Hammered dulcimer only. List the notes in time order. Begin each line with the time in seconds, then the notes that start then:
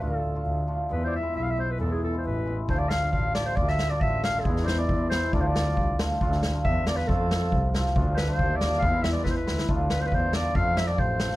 0.00 A3 D4 F4
0.35 A3 D4 F4
0.67 A3 D4 F4
0.89 G#3 B3 E4
1.23 G#3 B3 E4
1.57 G#3 B3 E4
1.80 G#3 B3 E4
2.13 G#3 B3 E4
2.46 G#3 B3 E4
2.69 A3 D4 F4
3.02 A3 D4 F4
3.35 A3 D4 F4
3.57 A3 D4 F4
3.90 A3 D4 F4
4.24 A3 D4 F4
4.45 G#3 B3 E4
4.78 G#3 B3 E4
5.13 G#3 B3 E4
5.34 A3 D4 F4
5.66 A3 D4 F4
5.99 A3 D4 F4
6.21 A3 D4 F4
6.54 A3 D4 F4
6.87 A3 D4 F4
7.08 A3 C4 F4
7.41 A3 C4 F4
7.74 A3 C4 F4
7.95 A3 D4 F4
8.28 A3 D4 F4
8.61 A3 D4 F4
8.83 G#3 B3 E4
9.14 G#3 B3 E4
9.46 G#3 B3 E4
9.69 A3 D4 F4
10.01 A3 D4 F4
10.33 A3 D4 F4
10.55 A3 C4 F4
10.88 A3 C4 F4
11.21 A3 C4 F4